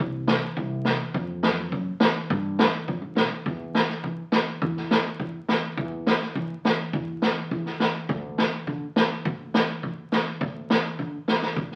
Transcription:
0.00 C2
0.28 snare
0.57 C2, kick
0.85 snare
1.14 F2, kick
1.43 snare
1.72 F#2, kick
2.00 snare
2.30 G2, kick
2.59 snare
2.88 F2, kick
3.02 G1
3.15 B1, snare
3.30 D2
3.46 E2, kick
3.75 snare
3.89 snare
4.04 E3, kick
4.32 snare
4.62 E2, kick
4.76 snare
4.91 snare
5.20 E2, kick
5.48 snare
5.77 E2, kick
6.07 snare
6.21 snare
6.35 E3, kick
6.65 snare
6.93 E2, kick
7.22 snare
7.51 E2, kick
7.66 snare
7.80 snare
8.09 D2, kick
8.38 snare
8.67 D3, kick
8.96 snare
9.25 D2, kick
9.54 snare
9.83 D2, kick
10.12 snare
10.41 D2, kick
10.70 snare
10.99 D3, kick
11.28 snare
11.42 snare
11.56 D2, kick
11.71 snare

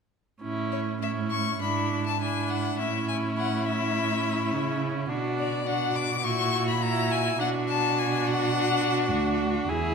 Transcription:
0.42 A2 C#4 E4
0.72 C#5
1.02 C#4 E4 E5
1.31 C#6
1.61 G#2 D4 E4 B5
2.06 A5
2.20 D4 E4 G#5
2.50 F#5
2.78 A2 C#4 E4 E5
3.08 G#5
3.37 F#5
3.66 E5
4.52 C#3
5.09 B2 D4 F#4
5.39 D5
5.66 D4 F#4 F#5
5.95 D6
6.23 A#2 E4 F#4 C#6
6.68 B5
6.80 E4 F#4 A#5
7.11 G#5
7.39 B2 D4 F#4 F#5
7.68 A5
7.98 G#5
8.26 F#5
9.10 D2
9.68 E2 E4 G#4

